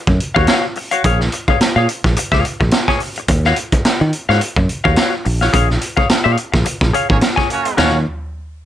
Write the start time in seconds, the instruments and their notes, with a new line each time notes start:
0.07 fingered electric bass F#2, muted clean electric guitar stroke, kick
0.20 closed hi-hat
0.35 fingered electric bass D#2, clean electric guitar F#4 C#5 F5, kick
0.47 clean electric guitar F#4 C#5 F5, snare, closed hi-hat
0.75 muted clean electric guitar stroke, open hi-hat
0.91 clean electric guitar F#4 C#5 F5, closed hi-hat
1.04 fingered electric bass A#1, clean electric guitar G#4 C#5 F5, kick, closed hi-hat
1.20 muted clean electric guitar stroke, snare
1.32 muted clean electric guitar stroke, closed hi-hat
1.48 clean electric guitar G#4 C#5 F5, muted fingered electric bass stroke, kick
1.61 muted fingered electric bass stroke, muted clean electric guitar stroke, snare, closed hi-hat
1.76 fingered electric bass A#2, clean electric guitar G#4 C#5 F5
1.89 muted clean electric guitar stroke, closed hi-hat
2.04 fingered electric bass A#1, muted clean electric guitar stroke, kick, snare
2.16 muted clean electric guitar stroke, closed hi-hat
2.32 fingered electric bass C#2, clean electric guitar G#4 C#5 F5, kick, snare
2.45 muted clean electric guitar stroke, closed hi-hat
2.60 fingered electric bass A#1, muted clean electric guitar stroke, kick
2.71 muted clean electric guitar stroke, snare, closed hi-hat
2.88 clean electric guitar G#4 C#5 G#5, kick, snare
3.00 muted clean electric guitar stroke, open hi-hat
3.16 muted clean electric guitar stroke, closed hi-hat
3.28 fingered electric bass D#2, muted clean electric guitar stroke, kick, closed hi-hat
3.44 clean electric guitar F#4 C#5 F5, snare
3.56 muted clean electric guitar stroke, closed hi-hat
3.72 muted fingered electric bass stroke, muted clean electric guitar stroke, kick, closed hi-hat
3.85 muted clean electric guitar stroke, muted fingered electric bass stroke, snare, closed hi-hat
4.00 fingered electric bass D#3, muted clean electric guitar stroke
4.13 closed hi-hat
4.29 fingered electric bass G#2, clean electric guitar F#4 C#5 F5, snare
4.41 muted clean electric guitar stroke, closed hi-hat
4.56 fingered electric bass F#2, muted clean electric guitar stroke, kick
4.69 closed hi-hat
4.84 fingered electric bass D#2, clean electric guitar F#4 C#5 F5, kick
4.96 clean electric guitar F#4 C#5 F5, snare, closed hi-hat
5.25 fingered electric bass A#1, muted clean electric guitar stroke, open hi-hat
5.41 clean electric guitar F#4 C#5 F5, snare
5.53 fingered electric bass A#1, clean electric guitar G#4 C#5 F5, kick, closed hi-hat
5.69 muted clean electric guitar stroke, snare
5.81 muted clean electric guitar stroke, closed hi-hat
5.97 clean electric guitar G#4 C#5 F5, muted fingered electric bass stroke, kick
6.09 muted clean electric guitar stroke, muted fingered electric bass stroke, snare, closed hi-hat
6.24 fingered electric bass A#2, clean electric guitar G#4 C#5 F5
6.37 muted clean electric guitar stroke, closed hi-hat
6.52 fingered electric bass A#1, muted clean electric guitar stroke, kick, snare
6.65 muted clean electric guitar stroke, closed hi-hat
6.81 fingered electric bass A#1, kick, snare
6.93 clean electric guitar G#4 C#5 F5, closed hi-hat
7.10 fingered electric bass G#1, horn section A#3 C#4 G#4 C#5, kick
7.21 muted clean electric guitar stroke, snare, closed hi-hat
7.36 clean electric guitar G#4 C#5 G#5, kick, snare
7.50 horn section A#3 C#4 F#4 C#5, muted clean electric guitar stroke, closed hi-hat
7.65 muted clean electric guitar stroke, closed hi-hat
7.77 fingered electric bass D#2, horn section A#3 C#4 F#4 C#5, clean electric guitar F#4 C#5 F5, snare, floor tom, crash